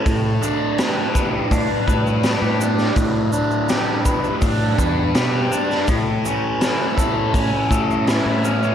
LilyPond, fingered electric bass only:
\new Staff \with { instrumentName = "Fingered electric bass" } { \clef bass \time 4/4 \key g \lydian \tempo 4 = 82 a,8 r4. a,16 r16 a,8. a,8. | a,8 r4. a,8 e,8 b,8 r8 | a,8 r4. a,16 r16 a,8. a,8. | }